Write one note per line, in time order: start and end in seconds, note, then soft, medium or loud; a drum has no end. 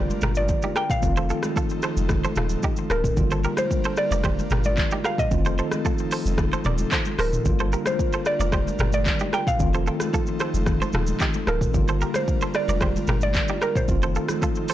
0.00 0.12 F1 loud
0.00 0.97 D3 medium
0.00 0.98 G3 medium
0.00 1.01 G3 medium
0.00 0.99 A#3 medium
0.00 1.01 D4 medium
0.00 1.00 F4 medium
0.00 1.01 F4 medium
0.00 1.01 A#4 medium
0.00 0.36 D5 loud
0.10 high conga medium
0.10 shaker medium
0.21 0.52 G1 medium
0.21 0.32 G4 medium
0.21 0.31 A#4 medium
0.21 cross-stick loud
0.21 mid tom loud
0.21 shaker medium
0.35 0.77 D5 loud
0.35 high conga medium
0.35 shaker medium
0.48 kick loud
0.48 low conga medium
0.48 shaker medium
0.62 0.72 D#4 medium
0.62 0.71 G4 medium
0.62 high conga medium
0.62 shaker medium
0.76 0.85 G4 medium
0.76 0.85 A#4 medium
0.76 0.90 G5 loud
0.76 cross-stick medium
0.76 shaker medium
0.90 2.97 F5 loud
0.90 kick medium
0.90 mid tom medium
0.90 shaker medium
1.00 1.33 F1 loud
1.00 3.12 D#3 medium
1.00 3.15 F3 medium
1.00 3.13 A3 medium
1.00 3.15 C4 medium
1.00 3.13 C4 medium
1.00 3.15 D#4 medium
1.00 3.15 A4 medium
1.00 kick loud
1.00 low conga medium
1.00 shaker medium
1.05 3.14 F4 medium
1.16 1.25 A4 medium
1.16 1.25 C5 medium
1.16 shaker medium
1.30 1.39 F4 medium
1.30 1.38 A4 medium
1.30 shaker medium
1.43 cross-stick medium
1.43 high conga medium
1.43 shaker loud
1.56 1.65 F4 medium
1.56 1.65 A4 medium
1.56 kick loud
1.56 shaker medium
1.69 shaker medium
1.82 1.92 A4 medium
1.82 1.92 C5 medium
1.82 cross-stick medium
1.82 shaker medium
1.97 2.26 F1 medium
1.97 high conga medium
1.97 shaker loud
2.09 kick loud
2.09 cross-stick medium
2.09 low conga medium
2.09 shaker medium
2.24 2.32 A4 medium
2.24 2.32 C5 medium
2.24 high conga medium
2.24 shaker medium
2.36 2.56 D#1 medium
2.36 2.46 F4 medium
2.36 2.45 A4 medium
2.36 cross-stick loud
2.36 mid tom medium
2.36 shaker medium
2.49 high conga medium
2.49 shaker medium
2.63 2.73 D#4 medium
2.63 2.72 G4 medium
2.63 kick loud
2.63 low conga medium
2.63 shaker medium
2.76 high conga medium
2.76 shaker medium
2.90 3.10 D1 loud
2.90 2.99 F4 medium
2.90 2.99 A4 medium
2.90 3.60 A#4 loud
2.90 cross-stick medium
2.90 shaker medium
3.04 kick medium
3.04 mid tom medium
3.04 shaker medium
3.15 3.47 G1 loud
3.15 5.26 D3 medium
3.15 5.27 G3 medium
3.15 5.29 G3 medium
3.15 5.28 A#3 medium
3.15 5.29 D4 medium
3.15 5.29 F4 medium
3.15 5.29 A#4 medium
3.15 kick loud
3.15 low conga medium
3.15 shaker medium
3.20 5.29 F4 medium
3.31 3.40 A4 medium
3.31 3.39 C5 medium
3.31 shaker medium
3.44 3.53 G4 medium
3.44 3.52 A#4 medium
3.44 shaker medium
3.57 3.99 C5 loud
3.57 cross-stick medium
3.57 high conga medium
3.57 shaker medium
3.71 kick loud
3.71 shaker medium
3.84 3.93 A4 medium
3.84 3.93 C5 medium
3.84 shaker medium
3.97 4.65 D5 loud
3.97 cross-stick medium
3.97 shaker medium
4.11 4.40 F1 loud
4.11 4.20 A#4 medium
4.11 4.19 D5 medium
4.11 high conga medium
4.11 shaker loud
4.24 4.33 G4 medium
4.24 4.33 C5 medium
4.24 kick loud
4.24 cross-stick medium
4.24 low conga medium
4.24 shaker medium
4.39 high conga medium
4.39 shaker medium
4.50 4.81 G1 medium
4.50 4.60 G4 medium
4.50 4.60 A#4 medium
4.50 cross-stick loud
4.50 mid tom loud
4.50 shaker medium
4.64 5.06 D5 medium
4.64 high conga medium
4.64 shaker medium
4.77 kick loud
4.77 clap medium
4.77 low conga medium
4.77 shaker medium
4.91 5.00 D#4 medium
4.91 5.00 G4 medium
4.91 high conga medium
4.91 shaker medium
5.04 5.14 G4 medium
5.04 5.13 A#4 medium
5.04 5.19 F5 loud
5.04 cross-stick medium
5.04 shaker medium
5.18 7.25 D#5 loud
5.18 kick medium
5.18 mid tom medium
5.18 shaker medium
5.29 5.61 F1 loud
5.29 7.40 D#3 medium
5.29 7.43 F3 medium
5.29 7.41 A3 medium
5.29 7.43 C4 medium
5.29 7.42 C4 medium
5.29 7.43 D#4 medium
5.29 7.43 A4 medium
5.29 kick loud
5.29 low conga medium
5.29 shaker medium
5.34 7.43 F4 medium
5.45 5.54 A4 medium
5.45 5.53 C5 medium
5.45 shaker medium
5.58 5.67 A4 medium
5.58 5.67 C5 medium
5.58 shaker medium
5.71 cross-stick medium
5.71 high conga medium
5.71 shaker medium
5.85 5.94 F4 medium
5.85 5.94 A4 medium
5.85 kick loud
5.85 shaker medium
5.98 shaker medium
6.11 6.21 A4 medium
6.11 6.20 C5 medium
6.11 open hi-hat medium
6.11 shaker medium
6.26 6.55 F1 medium
6.26 high conga medium
6.26 shaker loud
6.38 kick loud
6.38 cross-stick loud
6.38 low conga medium
6.38 shaker medium
6.53 6.61 A4 medium
6.53 6.60 C5 medium
6.53 high conga medium
6.53 shaker medium
6.64 6.85 D#1 medium
6.64 6.74 A#4 medium
6.64 6.74 D5 medium
6.64 mid tom loud
6.64 shaker medium
6.78 high conga medium
6.78 shaker medium
6.91 7.01 A4 medium
6.91 7.01 C5 medium
6.91 kick loud
6.91 clap medium
6.91 low conga medium
6.91 shaker medium
7.05 high conga medium
7.05 shaker medium
7.19 7.38 D1 medium
7.19 7.28 A4 medium
7.19 7.89 A#4 medium
7.19 7.27 C5 medium
7.19 cross-stick medium
7.19 open hi-hat medium
7.19 shaker medium
7.33 mid tom medium
7.33 shaker medium
7.43 7.75 G1 loud
7.43 9.55 D3 medium
7.43 9.55 G3 medium
7.43 9.58 G3 medium
7.43 7.53 A3 soft
7.43 9.58 D4 medium
7.43 9.58 F4 medium
7.43 9.58 A#4 medium
7.43 kick loud
7.43 low conga medium
7.43 shaker medium
7.48 9.57 F4 medium
7.53 9.60 A#3 medium
7.59 7.68 A4 medium
7.59 7.67 C5 medium
7.59 shaker medium
7.73 7.81 G4 medium
7.73 7.81 A#4 medium
7.73 shaker medium
7.86 8.27 C5 medium
7.86 cross-stick medium
7.86 high conga medium
7.86 shaker medium
7.99 kick loud
7.99 shaker medium
8.13 8.22 A4 medium
8.13 8.21 C5 medium
8.13 shaker medium
8.25 8.93 D5 loud
8.25 cross-stick medium
8.25 shaker medium
8.40 8.69 F1 loud
8.40 8.48 A#4 medium
8.40 8.48 D5 medium
8.40 high conga medium
8.40 shaker medium
8.52 8.62 G4 medium
8.52 8.61 C5 medium
8.52 kick loud
8.52 cross-stick loud
8.52 low conga medium
8.52 shaker medium
8.67 high conga medium
8.67 shaker medium
8.79 9.09 G1 medium
8.79 8.89 G4 medium
8.79 8.88 A#4 medium
8.79 cross-stick loud
8.79 mid tom medium
8.79 shaker medium
8.93 9.35 D5 loud
8.93 high conga medium
8.93 shaker medium
9.06 kick loud
9.06 clap medium
9.06 low conga medium
9.06 shaker medium
9.19 9.29 D#4 medium
9.19 9.28 G4 medium
9.19 high conga medium
9.19 shaker medium
9.33 9.42 G4 medium
9.33 9.42 A#4 medium
9.33 9.48 G5 loud
9.33 cross-stick medium
9.33 shaker medium
9.47 11.54 F5 loud
9.47 kick medium
9.47 mid tom medium
9.47 shaker medium
9.57 9.90 F1 loud
9.57 11.69 D#3 medium
9.57 11.72 F3 medium
9.57 11.70 A3 medium
9.57 11.72 C4 medium
9.57 11.70 C4 medium
9.57 11.72 D#4 medium
9.57 11.72 A4 medium
9.57 kick loud
9.57 low conga medium
9.57 shaker medium
9.62 11.71 F4 medium
9.74 9.82 A4 medium
9.74 9.82 C5 medium
9.74 shaker medium
9.87 9.96 F4 medium
9.87 9.95 A4 medium
9.87 shaker medium
10.00 cross-stick medium
10.00 high conga medium
10.00 shaker loud
10.14 10.23 F4 medium
10.14 10.22 A4 medium
10.14 kick loud
10.14 shaker medium
10.27 shaker medium
10.40 10.49 A4 medium
10.40 10.49 C5 medium
10.40 cross-stick medium
10.40 shaker medium
10.54 10.83 F1 medium
10.54 high conga medium
10.54 shaker medium
10.66 kick loud
10.66 cross-stick medium
10.66 low conga medium
10.66 shaker medium
10.81 10.90 A4 medium
10.81 10.89 C5 medium
10.81 high conga medium
10.81 shaker medium
10.93 11.13 D#1 medium
10.93 11.03 F4 medium
10.93 11.02 A4 medium
10.93 cross-stick loud
10.93 mid tom medium
10.93 shaker medium
11.07 high conga medium
11.07 shaker medium
11.20 11.30 D#4 medium
11.20 11.29 G4 medium
11.20 kick loud
11.20 clap medium
11.20 low conga medium
11.20 shaker medium
11.34 high conga medium
11.34 shaker medium
11.47 11.67 D1 medium
11.47 11.57 F4 medium
11.47 11.56 A4 medium
11.47 12.17 A#4 medium
11.47 cross-stick medium
11.47 shaker medium
11.61 kick medium
11.61 mid tom medium
11.61 shaker medium
11.72 12.04 G1 loud
11.72 13.83 D3 medium
11.72 13.84 G3 medium
11.72 13.86 G3 medium
11.72 13.85 A#3 medium
11.72 13.86 D4 medium
11.72 13.86 F4 medium
11.72 13.86 A#4 medium
11.72 kick loud
11.72 low conga medium
11.72 shaker medium
11.77 13.86 F4 medium
11.88 11.97 A4 medium
11.88 11.96 C5 medium
11.88 shaker medium
12.01 12.10 G4 medium
12.01 12.10 A#4 medium
12.01 shaker medium
12.14 12.56 C5 medium
12.14 cross-stick medium
12.14 high conga medium
12.14 shaker loud
12.28 kick loud
12.28 shaker medium
12.41 12.50 A4 medium
12.41 12.50 C5 medium
12.41 shaker medium
12.54 13.22 D5 medium
12.54 cross-stick medium
12.54 shaker medium
12.68 12.98 F1 loud
12.68 12.77 A#4 medium
12.68 12.76 D5 medium
12.68 high conga medium
12.68 shaker loud
12.81 12.91 G4 medium
12.81 12.90 C5 medium
12.81 kick loud
12.81 cross-stick loud
12.81 low conga medium
12.81 shaker medium
12.96 high conga medium
12.96 shaker medium
13.07 13.38 G1 medium
13.07 13.17 G4 medium
13.07 13.17 A#4 medium
13.07 cross-stick loud
13.07 mid tom loud
13.07 shaker medium
13.21 13.63 D5 medium
13.21 high conga medium
13.21 shaker medium
13.34 kick medium
13.34 clap medium
13.34 low conga medium
13.34 shaker medium
13.48 13.57 D#4 medium
13.48 13.57 G4 medium
13.48 high conga medium
13.48 shaker medium
13.62 13.71 G4 medium
13.62 13.70 A#4 medium
13.62 13.77 A#4 medium
13.62 cross-stick medium
13.62 shaker medium
13.75 14.74 C5 medium
13.75 kick medium
13.75 mid tom medium
13.75 shaker medium
13.86 14.18 F1 loud
13.86 14.74 D#3 medium
13.86 14.74 F3 medium
13.86 14.74 A3 medium
13.86 14.74 C4 medium
13.86 14.74 D#4 medium
13.86 14.74 A4 medium
13.86 kick loud
13.86 low conga medium
13.86 shaker medium
13.91 14.74 F4 medium
14.02 14.11 A4 medium
14.02 14.10 C5 medium
14.02 shaker medium
14.15 14.25 F4 medium
14.15 14.24 A4 medium
14.15 shaker medium
14.28 cross-stick medium
14.28 high conga medium
14.28 shaker medium
14.42 14.51 F4 medium
14.42 14.51 A4 medium
14.42 kick loud
14.42 shaker medium
14.55 shaker medium
14.68 14.74 A4 medium
14.68 14.74 C5 medium
14.68 open hi-hat medium
14.68 shaker medium